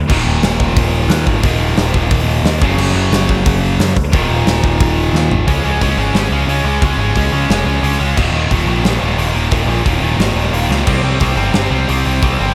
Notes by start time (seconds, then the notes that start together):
0.08 D#1 D#2 A#2 D#3, kick, crash
0.27 D#1
0.42 D#1, snare, open hi-hat
0.60 D#1, kick
0.77 D#1, kick, open hi-hat
1.08 D#2, snare, open hi-hat
1.27 G#1, kick
1.42 D#1 D#2 A#2, kick, open hi-hat
1.46 D#3
1.58 D#1
1.76 D#1, snare, open hi-hat
1.94 D#1, kick
2.11 D#1, kick, open hi-hat
2.43 D#2, snare, open hi-hat
2.60 F#1 F#2 C#3 F#3, kick
2.78 F#1, crash
2.94 F#1
3.10 F#1, snare, open hi-hat
3.29 F#1, kick
3.46 F#1, kick, open hi-hat
3.79 F#2, snare, open hi-hat
3.96 D2, kick
4.12 D#1 D#2 A#2 D#3, kick, open hi-hat
4.29 D#1
4.45 D#1, snare, open hi-hat
4.63 D#1, kick
4.80 D#1, kick, open hi-hat
5.13 D#2, snare
5.31 G#1, floor tom
5.47 C#2 C#3 G#3 C#4, kick, open hi-hat
5.64 C#2 C#3 G#3 C#4
5.81 C#2 C#3 G#3 C#4, kick, open hi-hat
5.97 G#1 C#3 G#3 C#4
6.14 G#1 C#3 G#3 C#4, snare, open hi-hat
6.31 C#2 C#3 G#3 C#4
6.47 C#2 C#3 G#3 C#4, open hi-hat
6.64 C#2 C#3 G#3 C#4
6.82 C#2 C#3 G#3 C#4, kick, open hi-hat
6.97 G#1 C#3 G#3 C#4
7.15 C#2 C#3 G#3 C#4, kick, open hi-hat
7.32 C#2 C#3 G#3 C#4
7.50 F1 C#3 G#3 C#4, snare, open hi-hat
7.65 C#2 C#3 G#3 C#4
7.83 C#2 C#3 G#3 C#4, open hi-hat
8.00 C#2 C#3 G#3 C#4
8.17 D#1 D#2 A#2 D#3, kick, crash
8.32 D#1 D#2 A#2 D#3
8.51 D#1 D#2 A#2 D#3, kick, open hi-hat
8.66 A#1 D#2 A#2 D#3
8.83 A#1 D#2 A#2 D#3, snare, open hi-hat
9.01 D#1 D#2 A#2 D#3
9.17 D#1 D#2 A#2 D#3, open hi-hat
9.34 D#1 D#2 A#2 D#3
9.51 D#1 D#2 A#2 D#3, kick, open hi-hat
9.67 A#1 D#2 A#2 D#3
9.84 D#1 D#2 A#2 D#3, kick, open hi-hat
10.01 D#1 D#2 A#2 D#3
10.18 G#1 D#2 A#2 D#3, snare, open hi-hat
10.34 D#1 D#2 A#2 D#3
10.52 D#1 D#2 A#2 D#3, open hi-hat
10.69 C#2 D#2 A#2 D#3, snare
10.86 C2 C3 G3 C4, kick, crash
11.03 C2 C3 G3 C4
11.20 C2 C3 G3 C4, kick, open hi-hat
11.37 G1 C3 G3 C4
11.53 G1 C3 G3 C4, snare, open hi-hat
11.71 C2 C3 G3 C4
11.88 C2 C3 G3 C4, open hi-hat
12.06 C2 C3 G3 C4
12.22 C2 C3 G3 C4, kick, open hi-hat
12.39 G1 C3 G3 C4